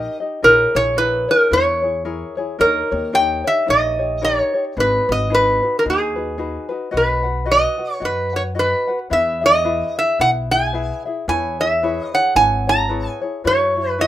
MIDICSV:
0, 0, Header, 1, 4, 480
1, 0, Start_track
1, 0, Key_signature, 5, "minor"
1, 0, Tempo, 542495
1, 379, Time_signature, 4, 2, 24, 8
1, 6135, Key_signature, 5, "major"
1, 12450, End_track
2, 0, Start_track
2, 0, Title_t, "Resonator guitar played with a steel bar"
2, 0, Program_c, 0, 25
2, 0, Note_on_c, 0, 75, 81
2, 158, Note_off_c, 0, 75, 0
2, 391, Note_on_c, 0, 70, 96
2, 675, Note_on_c, 0, 73, 92
2, 677, Note_off_c, 0, 70, 0
2, 851, Note_off_c, 0, 73, 0
2, 866, Note_on_c, 0, 71, 93
2, 1154, Note_off_c, 0, 71, 0
2, 1158, Note_on_c, 0, 70, 82
2, 1351, Note_off_c, 0, 70, 0
2, 1356, Note_on_c, 0, 73, 85
2, 2074, Note_off_c, 0, 73, 0
2, 2307, Note_on_c, 0, 70, 89
2, 2786, Note_on_c, 0, 79, 103
2, 2795, Note_off_c, 0, 70, 0
2, 3073, Note_off_c, 0, 79, 0
2, 3074, Note_on_c, 0, 76, 86
2, 3268, Note_off_c, 0, 76, 0
2, 3275, Note_on_c, 0, 75, 96
2, 3753, Note_off_c, 0, 75, 0
2, 3756, Note_on_c, 0, 73, 93
2, 4101, Note_off_c, 0, 73, 0
2, 4249, Note_on_c, 0, 71, 88
2, 4524, Note_off_c, 0, 71, 0
2, 4530, Note_on_c, 0, 75, 89
2, 4715, Note_off_c, 0, 75, 0
2, 4729, Note_on_c, 0, 71, 83
2, 5105, Note_off_c, 0, 71, 0
2, 5122, Note_on_c, 0, 70, 76
2, 5156, Note_off_c, 0, 70, 0
2, 5219, Note_on_c, 0, 68, 70
2, 5926, Note_off_c, 0, 68, 0
2, 6168, Note_on_c, 0, 71, 75
2, 6646, Note_off_c, 0, 71, 0
2, 6649, Note_on_c, 0, 75, 86
2, 7029, Note_off_c, 0, 75, 0
2, 7029, Note_on_c, 0, 73, 86
2, 7123, Note_on_c, 0, 71, 75
2, 7126, Note_off_c, 0, 73, 0
2, 7375, Note_off_c, 0, 71, 0
2, 7398, Note_on_c, 0, 73, 77
2, 7448, Note_off_c, 0, 73, 0
2, 7603, Note_on_c, 0, 71, 81
2, 7946, Note_off_c, 0, 71, 0
2, 8077, Note_on_c, 0, 76, 89
2, 8359, Note_off_c, 0, 76, 0
2, 8367, Note_on_c, 0, 75, 98
2, 8832, Note_off_c, 0, 75, 0
2, 8836, Note_on_c, 0, 76, 84
2, 9030, Note_off_c, 0, 76, 0
2, 9034, Note_on_c, 0, 78, 97
2, 9109, Note_off_c, 0, 78, 0
2, 9303, Note_on_c, 0, 80, 96
2, 9748, Note_off_c, 0, 80, 0
2, 9989, Note_on_c, 0, 80, 91
2, 10270, Note_on_c, 0, 76, 88
2, 10276, Note_off_c, 0, 80, 0
2, 10624, Note_off_c, 0, 76, 0
2, 10624, Note_on_c, 0, 75, 88
2, 10746, Note_on_c, 0, 78, 83
2, 10760, Note_off_c, 0, 75, 0
2, 10934, Note_off_c, 0, 78, 0
2, 10938, Note_on_c, 0, 80, 96
2, 11226, Note_off_c, 0, 80, 0
2, 11230, Note_on_c, 0, 82, 96
2, 11671, Note_off_c, 0, 82, 0
2, 11921, Note_on_c, 0, 73, 91
2, 12301, Note_off_c, 0, 73, 0
2, 12301, Note_on_c, 0, 71, 91
2, 12397, Note_on_c, 0, 76, 100
2, 12402, Note_off_c, 0, 71, 0
2, 12450, Note_off_c, 0, 76, 0
2, 12450, End_track
3, 0, Start_track
3, 0, Title_t, "Ukulele"
3, 0, Program_c, 1, 24
3, 0, Note_on_c, 1, 63, 75
3, 0, Note_on_c, 1, 67, 87
3, 0, Note_on_c, 1, 70, 70
3, 0, Note_on_c, 1, 75, 81
3, 166, Note_off_c, 1, 75, 0
3, 177, Note_off_c, 1, 67, 0
3, 177, Note_on_c, 1, 75, 61
3, 183, Note_off_c, 1, 70, 0
3, 185, Note_off_c, 1, 63, 0
3, 188, Note_on_c, 1, 67, 53
3, 197, Note_on_c, 1, 63, 44
3, 376, Note_off_c, 1, 75, 0
3, 376, Note_on_c, 1, 70, 73
3, 378, Note_off_c, 1, 63, 0
3, 381, Note_off_c, 1, 67, 0
3, 381, Note_on_c, 1, 64, 84
3, 384, Note_on_c, 1, 68, 91
3, 390, Note_on_c, 1, 73, 89
3, 651, Note_off_c, 1, 73, 0
3, 660, Note_off_c, 1, 68, 0
3, 661, Note_off_c, 1, 70, 0
3, 661, Note_on_c, 1, 73, 55
3, 664, Note_off_c, 1, 64, 0
3, 671, Note_on_c, 1, 68, 51
3, 679, Note_on_c, 1, 64, 49
3, 848, Note_off_c, 1, 64, 0
3, 852, Note_on_c, 1, 70, 72
3, 853, Note_off_c, 1, 68, 0
3, 857, Note_off_c, 1, 73, 0
3, 859, Note_on_c, 1, 64, 76
3, 864, Note_on_c, 1, 68, 88
3, 868, Note_on_c, 1, 73, 84
3, 1124, Note_off_c, 1, 73, 0
3, 1134, Note_on_c, 1, 73, 56
3, 1138, Note_off_c, 1, 68, 0
3, 1139, Note_off_c, 1, 70, 0
3, 1142, Note_off_c, 1, 64, 0
3, 1149, Note_on_c, 1, 68, 50
3, 1152, Note_on_c, 1, 64, 41
3, 1325, Note_off_c, 1, 64, 0
3, 1333, Note_off_c, 1, 73, 0
3, 1333, Note_on_c, 1, 70, 64
3, 1334, Note_off_c, 1, 68, 0
3, 1335, Note_on_c, 1, 64, 64
3, 1345, Note_on_c, 1, 68, 64
3, 1351, Note_on_c, 1, 73, 66
3, 1602, Note_off_c, 1, 73, 0
3, 1611, Note_off_c, 1, 68, 0
3, 1613, Note_on_c, 1, 73, 52
3, 1618, Note_off_c, 1, 70, 0
3, 1620, Note_off_c, 1, 64, 0
3, 1621, Note_on_c, 1, 68, 46
3, 1633, Note_on_c, 1, 64, 44
3, 1805, Note_off_c, 1, 64, 0
3, 1806, Note_off_c, 1, 68, 0
3, 1810, Note_off_c, 1, 73, 0
3, 1813, Note_on_c, 1, 70, 81
3, 1815, Note_on_c, 1, 64, 70
3, 1817, Note_on_c, 1, 68, 77
3, 1820, Note_on_c, 1, 73, 73
3, 2086, Note_off_c, 1, 73, 0
3, 2095, Note_off_c, 1, 68, 0
3, 2096, Note_on_c, 1, 73, 64
3, 2098, Note_off_c, 1, 70, 0
3, 2099, Note_off_c, 1, 64, 0
3, 2106, Note_on_c, 1, 68, 56
3, 2114, Note_on_c, 1, 64, 50
3, 2287, Note_off_c, 1, 64, 0
3, 2287, Note_on_c, 1, 70, 76
3, 2291, Note_off_c, 1, 73, 0
3, 2291, Note_on_c, 1, 63, 82
3, 2294, Note_off_c, 1, 68, 0
3, 2297, Note_on_c, 1, 67, 86
3, 2301, Note_on_c, 1, 73, 92
3, 2565, Note_off_c, 1, 73, 0
3, 2575, Note_off_c, 1, 70, 0
3, 2576, Note_on_c, 1, 73, 56
3, 2577, Note_off_c, 1, 63, 0
3, 2577, Note_off_c, 1, 67, 0
3, 2587, Note_on_c, 1, 67, 49
3, 2594, Note_on_c, 1, 63, 46
3, 2760, Note_off_c, 1, 63, 0
3, 2761, Note_off_c, 1, 67, 0
3, 2765, Note_off_c, 1, 73, 0
3, 2765, Note_on_c, 1, 70, 72
3, 2771, Note_on_c, 1, 63, 84
3, 2772, Note_on_c, 1, 67, 80
3, 2776, Note_on_c, 1, 73, 80
3, 3033, Note_off_c, 1, 73, 0
3, 3044, Note_on_c, 1, 73, 54
3, 3050, Note_off_c, 1, 67, 0
3, 3054, Note_off_c, 1, 70, 0
3, 3057, Note_off_c, 1, 63, 0
3, 3060, Note_on_c, 1, 67, 48
3, 3067, Note_on_c, 1, 63, 46
3, 3236, Note_off_c, 1, 63, 0
3, 3239, Note_on_c, 1, 70, 59
3, 3242, Note_off_c, 1, 67, 0
3, 3247, Note_off_c, 1, 73, 0
3, 3247, Note_on_c, 1, 63, 66
3, 3253, Note_on_c, 1, 67, 63
3, 3257, Note_on_c, 1, 73, 61
3, 3518, Note_off_c, 1, 73, 0
3, 3524, Note_off_c, 1, 67, 0
3, 3528, Note_on_c, 1, 73, 51
3, 3531, Note_off_c, 1, 70, 0
3, 3534, Note_off_c, 1, 63, 0
3, 3535, Note_on_c, 1, 67, 46
3, 3545, Note_on_c, 1, 63, 45
3, 3722, Note_off_c, 1, 63, 0
3, 3724, Note_off_c, 1, 67, 0
3, 3728, Note_on_c, 1, 70, 76
3, 3729, Note_off_c, 1, 73, 0
3, 3733, Note_on_c, 1, 63, 75
3, 3735, Note_on_c, 1, 67, 74
3, 3739, Note_on_c, 1, 73, 88
3, 4005, Note_off_c, 1, 73, 0
3, 4011, Note_off_c, 1, 67, 0
3, 4015, Note_off_c, 1, 70, 0
3, 4016, Note_on_c, 1, 73, 55
3, 4018, Note_off_c, 1, 63, 0
3, 4022, Note_on_c, 1, 67, 49
3, 4033, Note_on_c, 1, 63, 41
3, 4213, Note_off_c, 1, 63, 0
3, 4213, Note_off_c, 1, 73, 0
3, 4216, Note_off_c, 1, 67, 0
3, 4217, Note_on_c, 1, 68, 77
3, 4223, Note_on_c, 1, 63, 81
3, 4223, Note_on_c, 1, 66, 79
3, 4227, Note_on_c, 1, 71, 86
3, 4485, Note_off_c, 1, 71, 0
3, 4495, Note_on_c, 1, 71, 58
3, 4499, Note_off_c, 1, 66, 0
3, 4500, Note_off_c, 1, 68, 0
3, 4503, Note_off_c, 1, 63, 0
3, 4509, Note_on_c, 1, 66, 51
3, 4517, Note_on_c, 1, 63, 46
3, 4681, Note_off_c, 1, 63, 0
3, 4688, Note_off_c, 1, 66, 0
3, 4689, Note_on_c, 1, 68, 81
3, 4691, Note_on_c, 1, 63, 84
3, 4693, Note_off_c, 1, 71, 0
3, 4698, Note_on_c, 1, 66, 76
3, 4704, Note_on_c, 1, 71, 84
3, 4965, Note_off_c, 1, 71, 0
3, 4973, Note_off_c, 1, 66, 0
3, 4976, Note_off_c, 1, 68, 0
3, 4976, Note_on_c, 1, 71, 51
3, 4977, Note_off_c, 1, 63, 0
3, 4984, Note_on_c, 1, 66, 45
3, 4991, Note_on_c, 1, 63, 41
3, 5167, Note_off_c, 1, 63, 0
3, 5169, Note_on_c, 1, 68, 54
3, 5170, Note_off_c, 1, 66, 0
3, 5173, Note_off_c, 1, 71, 0
3, 5177, Note_on_c, 1, 63, 60
3, 5181, Note_on_c, 1, 66, 67
3, 5186, Note_on_c, 1, 71, 63
3, 5436, Note_off_c, 1, 71, 0
3, 5445, Note_off_c, 1, 66, 0
3, 5446, Note_on_c, 1, 71, 47
3, 5455, Note_off_c, 1, 63, 0
3, 5456, Note_off_c, 1, 68, 0
3, 5456, Note_on_c, 1, 66, 45
3, 5465, Note_on_c, 1, 63, 43
3, 5636, Note_off_c, 1, 63, 0
3, 5642, Note_off_c, 1, 66, 0
3, 5643, Note_on_c, 1, 68, 76
3, 5646, Note_off_c, 1, 71, 0
3, 5646, Note_on_c, 1, 63, 74
3, 5653, Note_on_c, 1, 66, 72
3, 5656, Note_on_c, 1, 71, 75
3, 5906, Note_off_c, 1, 71, 0
3, 5917, Note_off_c, 1, 66, 0
3, 5917, Note_on_c, 1, 71, 66
3, 5926, Note_off_c, 1, 63, 0
3, 5928, Note_on_c, 1, 66, 53
3, 5933, Note_off_c, 1, 68, 0
3, 5937, Note_on_c, 1, 63, 48
3, 6108, Note_off_c, 1, 66, 0
3, 6114, Note_on_c, 1, 75, 86
3, 6115, Note_off_c, 1, 63, 0
3, 6115, Note_off_c, 1, 71, 0
3, 6118, Note_on_c, 1, 66, 73
3, 6126, Note_on_c, 1, 71, 89
3, 6127, Note_on_c, 1, 78, 84
3, 6386, Note_off_c, 1, 78, 0
3, 6396, Note_on_c, 1, 78, 52
3, 6397, Note_off_c, 1, 71, 0
3, 6408, Note_off_c, 1, 66, 0
3, 6408, Note_on_c, 1, 71, 53
3, 6409, Note_off_c, 1, 75, 0
3, 6418, Note_on_c, 1, 66, 45
3, 6591, Note_off_c, 1, 66, 0
3, 6592, Note_off_c, 1, 71, 0
3, 6596, Note_on_c, 1, 75, 73
3, 6598, Note_off_c, 1, 78, 0
3, 6602, Note_on_c, 1, 66, 78
3, 6603, Note_on_c, 1, 71, 84
3, 6609, Note_on_c, 1, 78, 80
3, 6874, Note_off_c, 1, 78, 0
3, 6882, Note_off_c, 1, 71, 0
3, 6885, Note_on_c, 1, 78, 49
3, 6887, Note_off_c, 1, 66, 0
3, 6890, Note_off_c, 1, 75, 0
3, 6893, Note_on_c, 1, 71, 43
3, 6898, Note_on_c, 1, 66, 40
3, 7071, Note_off_c, 1, 66, 0
3, 7079, Note_on_c, 1, 75, 59
3, 7082, Note_on_c, 1, 66, 58
3, 7083, Note_off_c, 1, 71, 0
3, 7084, Note_off_c, 1, 78, 0
3, 7094, Note_on_c, 1, 71, 60
3, 7094, Note_on_c, 1, 78, 61
3, 7359, Note_off_c, 1, 78, 0
3, 7368, Note_off_c, 1, 71, 0
3, 7369, Note_on_c, 1, 78, 51
3, 7372, Note_off_c, 1, 75, 0
3, 7373, Note_off_c, 1, 66, 0
3, 7379, Note_on_c, 1, 71, 48
3, 7390, Note_on_c, 1, 66, 43
3, 7558, Note_off_c, 1, 66, 0
3, 7563, Note_on_c, 1, 75, 78
3, 7564, Note_off_c, 1, 71, 0
3, 7564, Note_off_c, 1, 78, 0
3, 7569, Note_on_c, 1, 66, 75
3, 7574, Note_on_c, 1, 71, 75
3, 7574, Note_on_c, 1, 78, 82
3, 7841, Note_off_c, 1, 78, 0
3, 7852, Note_off_c, 1, 71, 0
3, 7852, Note_on_c, 1, 78, 49
3, 7854, Note_off_c, 1, 75, 0
3, 7857, Note_off_c, 1, 66, 0
3, 7862, Note_on_c, 1, 71, 46
3, 7871, Note_on_c, 1, 66, 45
3, 8040, Note_off_c, 1, 71, 0
3, 8051, Note_on_c, 1, 71, 73
3, 8052, Note_off_c, 1, 78, 0
3, 8053, Note_on_c, 1, 64, 74
3, 8057, Note_off_c, 1, 66, 0
3, 8060, Note_on_c, 1, 68, 85
3, 8062, Note_on_c, 1, 76, 93
3, 8318, Note_off_c, 1, 76, 0
3, 8328, Note_on_c, 1, 76, 61
3, 8329, Note_off_c, 1, 68, 0
3, 8332, Note_off_c, 1, 64, 0
3, 8338, Note_off_c, 1, 71, 0
3, 8340, Note_on_c, 1, 68, 54
3, 8343, Note_on_c, 1, 64, 41
3, 8526, Note_off_c, 1, 64, 0
3, 8530, Note_off_c, 1, 68, 0
3, 8530, Note_off_c, 1, 76, 0
3, 8531, Note_on_c, 1, 71, 80
3, 8537, Note_on_c, 1, 64, 80
3, 8541, Note_on_c, 1, 68, 77
3, 8544, Note_on_c, 1, 76, 81
3, 8809, Note_off_c, 1, 76, 0
3, 8818, Note_off_c, 1, 71, 0
3, 8819, Note_off_c, 1, 68, 0
3, 8820, Note_on_c, 1, 76, 56
3, 8821, Note_off_c, 1, 64, 0
3, 8829, Note_on_c, 1, 68, 46
3, 8835, Note_on_c, 1, 64, 48
3, 9012, Note_off_c, 1, 64, 0
3, 9016, Note_off_c, 1, 76, 0
3, 9016, Note_on_c, 1, 71, 61
3, 9018, Note_off_c, 1, 68, 0
3, 9022, Note_on_c, 1, 64, 63
3, 9028, Note_on_c, 1, 68, 64
3, 9033, Note_on_c, 1, 76, 65
3, 9295, Note_off_c, 1, 76, 0
3, 9300, Note_off_c, 1, 71, 0
3, 9304, Note_off_c, 1, 64, 0
3, 9304, Note_off_c, 1, 68, 0
3, 9306, Note_on_c, 1, 76, 56
3, 9315, Note_on_c, 1, 68, 47
3, 9322, Note_on_c, 1, 64, 43
3, 9486, Note_off_c, 1, 64, 0
3, 9493, Note_on_c, 1, 71, 70
3, 9495, Note_off_c, 1, 68, 0
3, 9497, Note_on_c, 1, 64, 76
3, 9499, Note_off_c, 1, 76, 0
3, 9506, Note_on_c, 1, 68, 83
3, 9510, Note_on_c, 1, 76, 83
3, 9771, Note_off_c, 1, 76, 0
3, 9779, Note_off_c, 1, 71, 0
3, 9781, Note_off_c, 1, 64, 0
3, 9781, Note_off_c, 1, 68, 0
3, 9781, Note_on_c, 1, 76, 54
3, 9792, Note_on_c, 1, 68, 53
3, 9803, Note_on_c, 1, 64, 49
3, 9972, Note_off_c, 1, 64, 0
3, 9977, Note_off_c, 1, 68, 0
3, 9977, Note_off_c, 1, 76, 0
3, 9979, Note_on_c, 1, 71, 74
3, 9983, Note_on_c, 1, 64, 84
3, 9988, Note_on_c, 1, 68, 81
3, 9992, Note_on_c, 1, 73, 90
3, 10253, Note_off_c, 1, 73, 0
3, 10261, Note_off_c, 1, 68, 0
3, 10262, Note_off_c, 1, 71, 0
3, 10263, Note_on_c, 1, 73, 60
3, 10264, Note_off_c, 1, 64, 0
3, 10271, Note_on_c, 1, 68, 51
3, 10280, Note_on_c, 1, 64, 50
3, 10458, Note_off_c, 1, 68, 0
3, 10458, Note_off_c, 1, 73, 0
3, 10459, Note_off_c, 1, 64, 0
3, 10462, Note_on_c, 1, 71, 68
3, 10469, Note_on_c, 1, 64, 82
3, 10469, Note_on_c, 1, 68, 77
3, 10475, Note_on_c, 1, 73, 90
3, 10729, Note_off_c, 1, 73, 0
3, 10737, Note_off_c, 1, 68, 0
3, 10740, Note_on_c, 1, 73, 58
3, 10744, Note_off_c, 1, 71, 0
3, 10745, Note_off_c, 1, 64, 0
3, 10748, Note_on_c, 1, 68, 51
3, 10755, Note_on_c, 1, 64, 43
3, 10925, Note_off_c, 1, 64, 0
3, 10930, Note_off_c, 1, 68, 0
3, 10931, Note_on_c, 1, 71, 63
3, 10936, Note_off_c, 1, 73, 0
3, 10936, Note_on_c, 1, 64, 63
3, 10941, Note_on_c, 1, 68, 64
3, 10947, Note_on_c, 1, 73, 70
3, 11201, Note_off_c, 1, 73, 0
3, 11212, Note_on_c, 1, 73, 50
3, 11213, Note_off_c, 1, 68, 0
3, 11218, Note_off_c, 1, 71, 0
3, 11220, Note_off_c, 1, 64, 0
3, 11224, Note_on_c, 1, 68, 47
3, 11233, Note_on_c, 1, 64, 49
3, 11400, Note_off_c, 1, 64, 0
3, 11403, Note_off_c, 1, 68, 0
3, 11405, Note_on_c, 1, 71, 80
3, 11408, Note_off_c, 1, 73, 0
3, 11410, Note_on_c, 1, 64, 77
3, 11413, Note_on_c, 1, 68, 76
3, 11419, Note_on_c, 1, 73, 81
3, 11682, Note_off_c, 1, 73, 0
3, 11692, Note_off_c, 1, 68, 0
3, 11692, Note_on_c, 1, 73, 53
3, 11694, Note_off_c, 1, 71, 0
3, 11697, Note_off_c, 1, 64, 0
3, 11703, Note_on_c, 1, 68, 46
3, 11712, Note_on_c, 1, 64, 41
3, 11889, Note_off_c, 1, 64, 0
3, 11892, Note_off_c, 1, 73, 0
3, 11893, Note_on_c, 1, 71, 81
3, 11896, Note_off_c, 1, 68, 0
3, 11898, Note_on_c, 1, 66, 87
3, 11899, Note_on_c, 1, 64, 77
3, 11903, Note_on_c, 1, 73, 84
3, 12161, Note_off_c, 1, 73, 0
3, 12168, Note_off_c, 1, 64, 0
3, 12168, Note_off_c, 1, 71, 0
3, 12171, Note_on_c, 1, 73, 56
3, 12177, Note_off_c, 1, 66, 0
3, 12179, Note_on_c, 1, 64, 52
3, 12187, Note_on_c, 1, 66, 46
3, 12366, Note_off_c, 1, 66, 0
3, 12368, Note_off_c, 1, 73, 0
3, 12371, Note_on_c, 1, 71, 75
3, 12372, Note_off_c, 1, 64, 0
3, 12377, Note_on_c, 1, 66, 76
3, 12382, Note_on_c, 1, 64, 83
3, 12386, Note_on_c, 1, 73, 84
3, 12450, Note_off_c, 1, 64, 0
3, 12450, Note_off_c, 1, 66, 0
3, 12450, Note_off_c, 1, 71, 0
3, 12450, Note_off_c, 1, 73, 0
3, 12450, End_track
4, 0, Start_track
4, 0, Title_t, "Upright bass"
4, 0, Program_c, 2, 32
4, 386, Note_on_c, 2, 34, 96
4, 568, Note_off_c, 2, 34, 0
4, 663, Note_on_c, 2, 34, 101
4, 1101, Note_off_c, 2, 34, 0
4, 1341, Note_on_c, 2, 40, 88
4, 1962, Note_off_c, 2, 40, 0
4, 2298, Note_on_c, 2, 39, 94
4, 2482, Note_off_c, 2, 39, 0
4, 2583, Note_on_c, 2, 39, 99
4, 3021, Note_off_c, 2, 39, 0
4, 3265, Note_on_c, 2, 34, 89
4, 3885, Note_off_c, 2, 34, 0
4, 4218, Note_on_c, 2, 32, 98
4, 4401, Note_off_c, 2, 32, 0
4, 4503, Note_on_c, 2, 32, 102
4, 4941, Note_off_c, 2, 32, 0
4, 5183, Note_on_c, 2, 39, 88
4, 5805, Note_off_c, 2, 39, 0
4, 6140, Note_on_c, 2, 35, 88
4, 6763, Note_off_c, 2, 35, 0
4, 7093, Note_on_c, 2, 42, 91
4, 7718, Note_off_c, 2, 42, 0
4, 8059, Note_on_c, 2, 40, 91
4, 8683, Note_off_c, 2, 40, 0
4, 9020, Note_on_c, 2, 35, 90
4, 9643, Note_off_c, 2, 35, 0
4, 9979, Note_on_c, 2, 40, 93
4, 10602, Note_off_c, 2, 40, 0
4, 10931, Note_on_c, 2, 32, 91
4, 11556, Note_off_c, 2, 32, 0
4, 11899, Note_on_c, 2, 42, 96
4, 12450, Note_off_c, 2, 42, 0
4, 12450, End_track
0, 0, End_of_file